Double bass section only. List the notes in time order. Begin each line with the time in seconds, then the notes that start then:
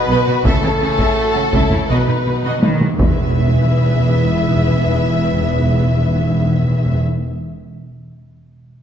0.08 B1
0.45 C#2
0.81 C#2
1.53 C#2
1.90 B1
2.26 B1
2.63 B1
3.00 E1